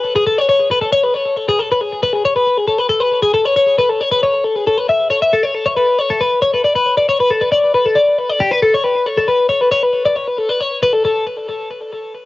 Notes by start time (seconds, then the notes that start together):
Already playing: B4
0.16 G#4
0.27 A4
0.38 C#5
0.49 C#5
0.71 B4
0.81 A4
0.93 C#5
1.04 B4
1.14 C#5
1.37 A4
1.49 G#4
1.59 A4
1.72 B4
1.81 G#4
2.03 B4
2.13 G#4
2.25 C#5
2.36 B4
2.58 G#4
2.68 A4
2.78 B4
2.89 A4
3.00 B4
3.22 G#4
3.34 A4
3.45 C#5
3.56 C#5
3.78 B4
3.89 A4
4.01 C#5
4.12 B4
4.23 C#5
4.44 A4
4.56 G#4
4.67 A4
4.78 B4
4.89 E5
5.10 C#5
5.22 E5
5.33 A4
5.43 C#5
5.55 A4
5.66 C#5
5.77 B4
5.99 C#5
6.10 A4
6.21 B4
6.42 C#5
6.54 B4
6.64 D5
6.75 B4
6.97 D5
7.09 C#5
7.20 B4
7.30 A4
7.41 B4
7.52 D5
7.74 B4
7.86 A4
7.95 D5
8.19 B4
8.30 D5
8.40 G4
8.51 B4
8.62 A4
8.74 C#5
8.84 B4
9.06 C#5
9.17 A4
9.28 B4
9.49 C#5
9.61 B4
9.71 C#5
9.83 B4
10.06 D5
10.16 C#5
10.28 B4
10.38 A4
10.49 B4
10.61 C#5
10.83 B4
10.93 A4
11.05 A4